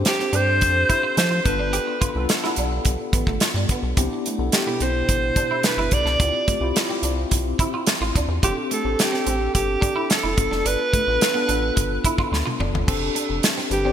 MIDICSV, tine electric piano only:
0, 0, Header, 1, 2, 480
1, 0, Start_track
1, 0, Tempo, 557103
1, 1501, Time_signature, 4, 2, 24, 8
1, 11998, End_track
2, 0, Start_track
2, 0, Title_t, "Tine electric piano"
2, 0, Program_c, 0, 4
2, 0, Control_c, 0, 64, 127
2, 0, Note_on_c, 0, 60, 66
2, 0, Note_on_c, 0, 62, 62
2, 0, Note_on_c, 0, 67, 64
2, 0, Note_on_c, 0, 69, 83
2, 0, Note_on_c, 0, 72, 76
2, 152, Note_off_c, 0, 60, 0
2, 152, Note_off_c, 0, 62, 0
2, 157, Note_off_c, 0, 67, 0
2, 157, Note_off_c, 0, 72, 0
2, 178, Note_on_c, 0, 60, 62
2, 183, Note_on_c, 0, 62, 59
2, 186, Note_on_c, 0, 67, 58
2, 190, Note_on_c, 0, 72, 68
2, 1049, Note_off_c, 0, 60, 0
2, 1051, Note_off_c, 0, 62, 0
2, 1053, Note_off_c, 0, 67, 0
2, 1055, Note_off_c, 0, 72, 0
2, 1252, Note_on_c, 0, 59, 68
2, 1260, Note_on_c, 0, 62, 67
2, 1260, Note_on_c, 0, 65, 63
2, 1263, Note_off_c, 0, 69, 0
2, 1263, Note_on_c, 0, 69, 76
2, 1271, Control_c, 0, 64, 0
2, 1409, Control_c, 0, 64, 127
2, 1800, Note_off_c, 0, 59, 0
2, 1804, Note_off_c, 0, 62, 0
2, 1804, Note_off_c, 0, 65, 0
2, 1806, Note_off_c, 0, 69, 0
2, 1858, Note_on_c, 0, 59, 77
2, 1860, Note_on_c, 0, 62, 70
2, 1862, Note_on_c, 0, 65, 69
2, 1871, Note_on_c, 0, 69, 88
2, 2077, Note_off_c, 0, 59, 0
2, 2078, Note_off_c, 0, 62, 0
2, 2079, Note_off_c, 0, 65, 0
2, 2084, Note_off_c, 0, 69, 0
2, 2092, Note_on_c, 0, 59, 78
2, 2095, Note_on_c, 0, 62, 64
2, 2096, Note_on_c, 0, 65, 64
2, 2101, Note_on_c, 0, 67, 80
2, 2967, Note_off_c, 0, 59, 0
2, 2969, Note_off_c, 0, 62, 0
2, 2969, Note_off_c, 0, 65, 0
2, 2971, Note_off_c, 0, 67, 0
2, 3418, Note_on_c, 0, 59, 75
2, 3419, Note_on_c, 0, 62, 77
2, 3424, Note_on_c, 0, 64, 77
2, 3424, Note_on_c, 0, 67, 86
2, 3433, Control_c, 0, 64, 0
2, 3579, Control_c, 0, 64, 127
2, 3747, Note_off_c, 0, 59, 0
2, 3747, Note_off_c, 0, 62, 0
2, 3750, Note_off_c, 0, 64, 0
2, 3750, Note_off_c, 0, 67, 0
2, 3774, Note_on_c, 0, 59, 63
2, 3779, Note_on_c, 0, 62, 60
2, 3783, Note_on_c, 0, 64, 59
2, 3786, Note_on_c, 0, 69, 72
2, 3996, Note_off_c, 0, 59, 0
2, 3999, Note_off_c, 0, 62, 0
2, 4000, Note_off_c, 0, 64, 0
2, 4002, Note_off_c, 0, 69, 0
2, 4014, Note_on_c, 0, 47, 61
2, 4016, Note_on_c, 0, 62, 54
2, 4019, Note_on_c, 0, 64, 59
2, 4023, Note_on_c, 0, 67, 70
2, 4888, Note_off_c, 0, 47, 0
2, 4889, Note_off_c, 0, 62, 0
2, 4891, Note_off_c, 0, 64, 0
2, 4893, Note_off_c, 0, 67, 0
2, 5331, Note_on_c, 0, 60, 70
2, 5336, Note_on_c, 0, 64, 64
2, 5339, Note_on_c, 0, 65, 61
2, 5343, Note_on_c, 0, 67, 78
2, 5354, Control_c, 0, 64, 0
2, 5509, Control_c, 0, 64, 127
2, 5663, Note_off_c, 0, 60, 0
2, 5666, Note_off_c, 0, 64, 0
2, 5667, Note_off_c, 0, 65, 0
2, 5669, Note_off_c, 0, 67, 0
2, 5694, Note_on_c, 0, 60, 83
2, 5694, Note_on_c, 0, 64, 72
2, 5697, Note_on_c, 0, 65, 72
2, 5702, Note_on_c, 0, 67, 87
2, 5916, Note_off_c, 0, 60, 0
2, 5916, Note_off_c, 0, 64, 0
2, 5917, Note_off_c, 0, 65, 0
2, 5920, Note_off_c, 0, 67, 0
2, 5945, Note_on_c, 0, 60, 76
2, 5950, Note_on_c, 0, 64, 63
2, 5950, Note_on_c, 0, 65, 69
2, 5958, Note_on_c, 0, 67, 79
2, 6813, Note_off_c, 0, 60, 0
2, 6815, Note_off_c, 0, 65, 0
2, 6816, Note_off_c, 0, 64, 0
2, 6819, Note_off_c, 0, 67, 0
2, 7261, Note_on_c, 0, 60, 64
2, 7266, Note_on_c, 0, 62, 61
2, 7267, Note_on_c, 0, 67, 63
2, 7268, Note_on_c, 0, 69, 75
2, 7273, Control_c, 0, 64, 0
2, 7404, Control_c, 0, 64, 127
2, 7587, Note_off_c, 0, 60, 0
2, 7590, Note_off_c, 0, 62, 0
2, 7590, Note_off_c, 0, 67, 0
2, 7591, Note_off_c, 0, 69, 0
2, 7620, Note_on_c, 0, 60, 65
2, 7625, Note_on_c, 0, 62, 61
2, 7625, Note_on_c, 0, 67, 63
2, 7632, Note_on_c, 0, 69, 78
2, 7838, Note_off_c, 0, 60, 0
2, 7841, Note_off_c, 0, 62, 0
2, 7841, Note_off_c, 0, 67, 0
2, 7844, Note_off_c, 0, 69, 0
2, 7863, Note_on_c, 0, 60, 64
2, 7866, Note_on_c, 0, 62, 64
2, 7869, Note_on_c, 0, 67, 57
2, 7873, Note_on_c, 0, 69, 68
2, 8730, Note_off_c, 0, 60, 0
2, 8732, Note_off_c, 0, 62, 0
2, 8734, Note_off_c, 0, 67, 0
2, 8735, Note_off_c, 0, 69, 0
2, 8939, Note_on_c, 0, 59, 74
2, 8942, Note_on_c, 0, 62, 67
2, 8949, Note_on_c, 0, 65, 68
2, 8951, Control_c, 0, 64, 0
2, 8951, Note_on_c, 0, 69, 80
2, 9100, Control_c, 0, 64, 127
2, 9482, Note_off_c, 0, 59, 0
2, 9484, Note_off_c, 0, 62, 0
2, 9487, Note_off_c, 0, 65, 0
2, 9488, Note_off_c, 0, 69, 0
2, 9541, Note_on_c, 0, 59, 68
2, 9542, Note_on_c, 0, 62, 64
2, 9544, Note_on_c, 0, 65, 58
2, 9552, Note_on_c, 0, 71, 70
2, 9757, Note_off_c, 0, 59, 0
2, 9758, Note_off_c, 0, 62, 0
2, 9759, Note_off_c, 0, 65, 0
2, 9763, Note_off_c, 0, 71, 0
2, 9776, Note_on_c, 0, 59, 72
2, 9780, Note_on_c, 0, 62, 72
2, 9783, Note_on_c, 0, 65, 65
2, 9784, Note_on_c, 0, 69, 85
2, 10645, Note_off_c, 0, 59, 0
2, 10647, Note_off_c, 0, 62, 0
2, 10648, Note_off_c, 0, 65, 0
2, 10649, Note_off_c, 0, 69, 0
2, 11084, Note_on_c, 0, 60, 78
2, 11087, Note_on_c, 0, 62, 69
2, 11093, Note_on_c, 0, 69, 94
2, 11094, Note_on_c, 0, 67, 77
2, 11105, Control_c, 0, 64, 0
2, 11234, Control_c, 0, 64, 127
2, 11740, Note_off_c, 0, 60, 0
2, 11741, Note_off_c, 0, 62, 0
2, 11744, Note_off_c, 0, 69, 0
2, 11745, Note_off_c, 0, 67, 0
2, 11801, Note_on_c, 0, 60, 71
2, 11802, Note_on_c, 0, 62, 62
2, 11807, Note_on_c, 0, 67, 64
2, 11813, Note_on_c, 0, 71, 70
2, 11915, Note_off_c, 0, 60, 0
2, 11916, Note_off_c, 0, 62, 0
2, 11918, Note_off_c, 0, 67, 0
2, 11921, Note_off_c, 0, 71, 0
2, 11929, Note_on_c, 0, 60, 67
2, 11929, Note_on_c, 0, 62, 65
2, 11934, Note_on_c, 0, 67, 62
2, 11938, Note_on_c, 0, 74, 74
2, 11998, Note_off_c, 0, 60, 0
2, 11998, Note_off_c, 0, 62, 0
2, 11998, Note_off_c, 0, 67, 0
2, 11998, Note_off_c, 0, 74, 0
2, 11998, End_track
0, 0, End_of_file